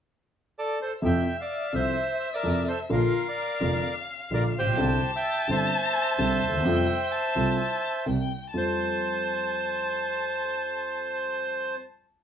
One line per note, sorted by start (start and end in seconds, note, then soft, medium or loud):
0.59 0.79 A4 medium
0.59 0.79 D5 medium
0.82 0.93 A4 medium
0.82 0.92 C5 medium
1.02 1.22 F2 medium
1.02 1.23 F2 medium
1.02 1.22 C3 medium
1.02 1.22 F3 medium
1.02 1.22 A3 soft
1.02 1.22 E4 medium
1.02 2.91 E5 medium
1.02 1.37 G5 medium
1.06 1.37 E5 medium
1.40 1.73 D5 medium
1.40 1.75 F5 medium
1.73 1.93 C2 soft
1.73 1.93 C3 soft
1.73 1.93 F3 soft
1.73 1.93 A3 soft
1.73 1.93 E4 soft
1.73 2.29 C5 medium
1.73 2.34 E5 medium
2.34 2.66 A#4 medium
2.34 2.69 D5 medium
2.43 2.63 F2 soft
2.43 2.64 F2 medium
2.43 2.63 C3 soft
2.43 2.63 F3 soft
2.43 2.63 A3 soft
2.43 2.63 E4 soft
2.68 2.79 A4 soft
2.68 2.78 C5 medium
2.89 3.10 A#1 medium
2.89 3.11 A#1 medium
2.89 3.10 A#2 medium
2.89 3.10 D3 medium
2.89 3.10 F3 medium
2.89 3.10 A#3 medium
2.89 3.10 F4 medium
2.89 3.25 F4 medium
2.89 3.28 A#4 medium
2.89 4.77 F5 medium
3.28 3.94 A#4 soft
3.28 3.93 D5 medium
3.60 3.81 F1 soft
3.60 3.81 F1 medium
3.60 3.81 F2 soft
3.60 3.80 D3 soft
3.60 3.80 F3 soft
3.60 3.81 A#3 soft
3.60 3.81 F4 soft
4.31 4.51 A#1 soft
4.31 4.51 A#1 medium
4.31 4.51 A#2 medium
4.31 4.51 D3 soft
4.31 4.51 F3 soft
4.31 4.51 A#3 soft
4.31 4.51 F4 soft
4.31 4.44 A#4 medium
4.31 4.44 D5 medium
4.54 4.78 A#1 soft
4.54 5.11 C5 medium
4.59 4.66 A1 soft
4.59 5.11 G4 medium
4.66 4.72 A#1 soft
4.72 4.78 B1 medium
4.77 4.97 C2 medium
4.77 4.98 C2 medium
4.77 4.97 C3 medium
4.77 4.97 D3 medium
4.77 4.97 G3 medium
4.77 4.97 C4 medium
4.77 4.97 E4 medium
4.77 6.61 A5 loud
5.16 5.47 E5 medium
5.16 5.51 G5 medium
5.48 5.68 G1 soft
5.48 5.68 G1 medium
5.48 5.68 G2 soft
5.48 5.68 D3 soft
5.48 5.67 G3 soft
5.48 5.68 C4 soft
5.48 5.68 E4 soft
5.48 8.04 C5 medium
5.52 8.05 E5 medium
6.18 6.38 C2 medium
6.18 6.38 C3 medium
6.18 6.38 D3 soft
6.18 6.38 G3 soft
6.18 6.38 C4 soft
6.18 6.38 E4 soft
6.42 6.65 D#2 soft
6.48 6.54 D2 soft
6.54 6.59 D#2 soft
6.59 6.65 E2 medium
6.65 6.85 F2 medium
6.65 6.85 C3 medium
6.65 6.85 F3 medium
6.65 6.85 G3 soft
6.65 6.85 A3 medium
6.65 6.85 F4 medium
6.65 7.13 G5 medium
7.11 7.57 A5 medium
7.35 7.56 C2 soft
7.35 7.55 C3 soft
7.35 7.56 G3 soft
7.35 7.55 A3 soft
7.35 7.56 F4 soft
7.58 8.03 A5 medium
8.06 8.27 C2 soft
8.06 8.27 C3 soft
8.06 8.26 G3 soft
8.06 8.27 A#3 soft
8.06 8.27 E4 soft
8.06 8.51 G5 medium
8.53 8.74 F2 soft
8.53 11.72 F2 soft
8.53 11.72 G3 soft
8.53 11.72 A3 soft
8.53 11.72 F4 soft
8.53 11.71 A5 medium
8.57 11.75 C5 medium